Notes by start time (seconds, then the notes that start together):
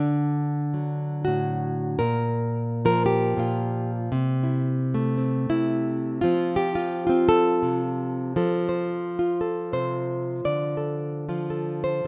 Already playing: D3 D4 A4
0.74 F#3
1.25 A2 F#4
1.99 A#2 A#4
2.85 F3 A#4
3.06 G4
3.37 A#2 F4
4.12 C3
4.43 E4
4.94 A3
5.17 C4
5.49 C3 E4
6.21 F3 C4 F4
6.56 G4
6.75 F4
7.07 C4 F4
7.29 A4
7.63 C3
8.36 F3 A4
8.69 C5
9.19 F4
9.41 A4
9.73 C3 C5
10.45 D3 D5
10.77 A4
11.29 F3 F4
11.50 A4
11.84 C5
12.04 D3